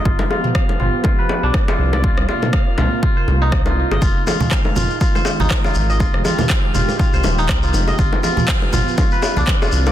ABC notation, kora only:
X:1
M:4/4
L:1/16
Q:"Swing 16ths" 1/4=121
K:Fm
V:1 name="Kora"
F z F z f z F z F =B z =D z F z =d | F z F z f z F z F c z E z F z e | F z F z f z F z F c z E z F z e | F z F z f z F z F c z E z F z e |
F z F z f z F z F =B z =D z F z =d |]